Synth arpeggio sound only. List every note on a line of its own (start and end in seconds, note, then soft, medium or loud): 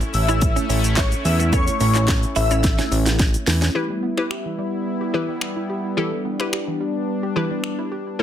3.75 3.85 E3 medium
3.90 3.99 G3 medium
4.03 4.13 B3 medium
4.17 4.26 E4 medium
4.31 4.41 G4 medium
4.45 4.54 E3 medium
4.58 4.68 G3 medium
5.01 5.10 G4 medium
5.14 5.24 E3 medium
5.29 5.38 G3 medium
5.56 5.65 E4 medium
5.70 5.80 G4 medium
5.97 6.07 E3 medium
6.12 6.21 G3 medium
6.25 6.35 B3 medium
6.40 6.49 E4 medium
6.53 6.63 G4 medium
6.67 6.76 E3 medium
6.81 6.91 G3 medium
7.23 7.32 G4 medium
7.36 7.46 E3 medium
7.51 7.60 G3 medium
7.79 7.88 E4 medium
7.92 8.02 G4 medium
8.19 8.23 A3 medium